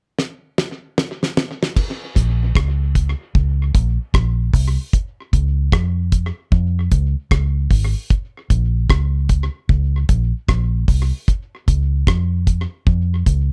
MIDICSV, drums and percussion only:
0, 0, Header, 1, 2, 480
1, 0, Start_track
1, 0, Key_signature, -5, "minor"
1, 0, Tempo, 792602
1, 1068, Time_signature, 4, 2, 24, 8
1, 8192, End_track
2, 0, Start_track
2, 0, Title_t, "Drums"
2, 112, Note_on_c, 9, 38, 53
2, 173, Note_off_c, 9, 38, 0
2, 352, Note_on_c, 9, 38, 77
2, 413, Note_off_c, 9, 38, 0
2, 593, Note_on_c, 9, 38, 82
2, 653, Note_off_c, 9, 38, 0
2, 744, Note_on_c, 9, 38, 73
2, 804, Note_off_c, 9, 38, 0
2, 831, Note_on_c, 9, 38, 96
2, 892, Note_off_c, 9, 38, 0
2, 984, Note_on_c, 9, 38, 80
2, 1045, Note_off_c, 9, 38, 0
2, 1069, Note_on_c, 9, 36, 104
2, 1069, Note_on_c, 9, 49, 83
2, 1129, Note_off_c, 9, 36, 0
2, 1130, Note_off_c, 9, 49, 0
2, 1309, Note_on_c, 9, 36, 96
2, 1312, Note_on_c, 9, 42, 81
2, 1369, Note_off_c, 9, 36, 0
2, 1373, Note_off_c, 9, 42, 0
2, 1547, Note_on_c, 9, 36, 117
2, 1554, Note_on_c, 9, 37, 110
2, 1607, Note_off_c, 9, 36, 0
2, 1614, Note_off_c, 9, 37, 0
2, 1788, Note_on_c, 9, 36, 91
2, 1790, Note_on_c, 9, 42, 74
2, 1849, Note_off_c, 9, 36, 0
2, 1850, Note_off_c, 9, 42, 0
2, 2029, Note_on_c, 9, 36, 109
2, 2089, Note_off_c, 9, 36, 0
2, 2269, Note_on_c, 9, 36, 105
2, 2269, Note_on_c, 9, 42, 72
2, 2329, Note_off_c, 9, 36, 0
2, 2329, Note_off_c, 9, 42, 0
2, 2507, Note_on_c, 9, 36, 100
2, 2512, Note_on_c, 9, 37, 97
2, 2567, Note_off_c, 9, 36, 0
2, 2572, Note_off_c, 9, 37, 0
2, 2746, Note_on_c, 9, 36, 90
2, 2752, Note_on_c, 9, 46, 68
2, 2807, Note_off_c, 9, 36, 0
2, 2812, Note_off_c, 9, 46, 0
2, 2988, Note_on_c, 9, 36, 109
2, 2988, Note_on_c, 9, 44, 63
2, 3048, Note_off_c, 9, 36, 0
2, 3049, Note_off_c, 9, 44, 0
2, 3228, Note_on_c, 9, 36, 88
2, 3230, Note_on_c, 9, 42, 81
2, 3289, Note_off_c, 9, 36, 0
2, 3291, Note_off_c, 9, 42, 0
2, 3466, Note_on_c, 9, 36, 119
2, 3472, Note_on_c, 9, 37, 117
2, 3527, Note_off_c, 9, 36, 0
2, 3533, Note_off_c, 9, 37, 0
2, 3707, Note_on_c, 9, 42, 72
2, 3708, Note_on_c, 9, 36, 96
2, 3768, Note_off_c, 9, 42, 0
2, 3769, Note_off_c, 9, 36, 0
2, 3948, Note_on_c, 9, 36, 112
2, 4008, Note_off_c, 9, 36, 0
2, 4188, Note_on_c, 9, 42, 64
2, 4189, Note_on_c, 9, 36, 95
2, 4248, Note_off_c, 9, 42, 0
2, 4249, Note_off_c, 9, 36, 0
2, 4427, Note_on_c, 9, 36, 93
2, 4431, Note_on_c, 9, 37, 98
2, 4488, Note_off_c, 9, 36, 0
2, 4491, Note_off_c, 9, 37, 0
2, 4667, Note_on_c, 9, 36, 96
2, 4669, Note_on_c, 9, 46, 74
2, 4727, Note_off_c, 9, 36, 0
2, 4730, Note_off_c, 9, 46, 0
2, 4906, Note_on_c, 9, 44, 58
2, 4908, Note_on_c, 9, 36, 110
2, 4967, Note_off_c, 9, 44, 0
2, 4968, Note_off_c, 9, 36, 0
2, 5149, Note_on_c, 9, 36, 93
2, 5149, Note_on_c, 9, 42, 78
2, 5209, Note_off_c, 9, 36, 0
2, 5210, Note_off_c, 9, 42, 0
2, 5387, Note_on_c, 9, 36, 113
2, 5392, Note_on_c, 9, 37, 119
2, 5448, Note_off_c, 9, 36, 0
2, 5453, Note_off_c, 9, 37, 0
2, 5627, Note_on_c, 9, 42, 76
2, 5629, Note_on_c, 9, 36, 96
2, 5688, Note_off_c, 9, 42, 0
2, 5690, Note_off_c, 9, 36, 0
2, 5870, Note_on_c, 9, 36, 107
2, 5930, Note_off_c, 9, 36, 0
2, 6110, Note_on_c, 9, 42, 63
2, 6111, Note_on_c, 9, 36, 94
2, 6170, Note_off_c, 9, 42, 0
2, 6171, Note_off_c, 9, 36, 0
2, 6350, Note_on_c, 9, 36, 99
2, 6353, Note_on_c, 9, 37, 101
2, 6410, Note_off_c, 9, 36, 0
2, 6413, Note_off_c, 9, 37, 0
2, 6589, Note_on_c, 9, 36, 98
2, 6593, Note_on_c, 9, 46, 69
2, 6650, Note_off_c, 9, 36, 0
2, 6653, Note_off_c, 9, 46, 0
2, 6831, Note_on_c, 9, 36, 105
2, 6832, Note_on_c, 9, 44, 56
2, 6892, Note_off_c, 9, 36, 0
2, 6892, Note_off_c, 9, 44, 0
2, 7072, Note_on_c, 9, 36, 92
2, 7074, Note_on_c, 9, 42, 73
2, 7133, Note_off_c, 9, 36, 0
2, 7135, Note_off_c, 9, 42, 0
2, 7310, Note_on_c, 9, 36, 107
2, 7317, Note_on_c, 9, 37, 119
2, 7371, Note_off_c, 9, 36, 0
2, 7378, Note_off_c, 9, 37, 0
2, 7552, Note_on_c, 9, 36, 91
2, 7553, Note_on_c, 9, 42, 79
2, 7613, Note_off_c, 9, 36, 0
2, 7613, Note_off_c, 9, 42, 0
2, 7792, Note_on_c, 9, 36, 110
2, 7853, Note_off_c, 9, 36, 0
2, 8033, Note_on_c, 9, 36, 91
2, 8034, Note_on_c, 9, 42, 66
2, 8093, Note_off_c, 9, 36, 0
2, 8095, Note_off_c, 9, 42, 0
2, 8192, End_track
0, 0, End_of_file